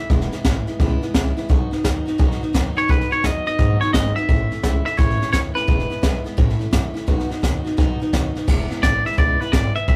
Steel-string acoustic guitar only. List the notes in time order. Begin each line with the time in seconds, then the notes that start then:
Already playing: E4
0.00 A3 C#4
0.10 E2 B2 E3 G#3 B3 E4
0.32 E3 G#3 B3 E4
0.45 E3 G#3 B3 E4
0.67 E3 G#3 B3 E4
0.80 E2 B2 E3 G#3 B3 E4
1.02 E3 G#3 B3 E4
1.14 E3 G#3 B3 E4
1.37 E3 G#3 B3 E4
1.49 B2 F#3 B3 D#4 F#4
1.71 B3 D#4 F#4
1.84 F#3 B3 D#4 F#4
2.05 B3 D#4 F#4
2.18 B2 F#3 B3 D#4 F#4
2.41 B3 D#4 F#4
2.53 F#3 B3 D#4 F#4
2.75 B3 D#4 F#4
2.88 B2 F#3 B3 D#4 F#4
3.10 B3 D#4 F#4
3.23 F#3 B3 D#4 F#4
3.46 B3 D#4 F#4
3.58 B2 F#3 B3 D#4 F#4
3.81 B3 D#4 F#4
3.94 F#3 B3 D#4 F#4
4.16 B3 D#4 F#4
4.29 A2 E3 A3 C#4 E4
4.51 A3 C#4 E4
4.63 E3 A3 C#4 E4
4.85 A3 C#4 E4
4.97 A2 E3 A3 C#4 E4
5.20 A3 C#4 E4
5.32 E3 A3 C#4 E4
5.54 A3 C#4 E4
5.67 E2 B2 E3 G#3 B3 E4
5.89 E3 G#3 B3 E4
6.02 E3 G#3 B3 E4
6.24 E3 G#3 B3 E4
6.37 A2 E3 A3 C#4 E4
6.59 A3 C#4 E4
6.71 E3 A3 C#4 E4
6.94 A3 C#4 E4
7.07 B2 F#3 B3 D#4 F#4
7.29 B3 D#4 F#4
7.42 F#3 B3 D#4 F#4
7.64 B3 D#4 F#4
7.77 B2 F#3 B3 D#4 F#4
8.00 B3 D#4 F#4
8.13 F#3 B3 D#4 F#4
8.35 B3 D#4 F#4
8.47 E2 B2 E3 G#3 B3 E4
8.70 E3 G#3 B3 E4
8.82 E3 G#3 B3
9.05 E3 G#3 B3 E4
9.17 E2 B2 E3 G#3 B3 E4
9.40 E3 G#3 B3 E4
9.52 E3 G#3 B3 E4
9.75 E3 G#3 B3 E4
9.88 A2 E3 A3 C#4 E4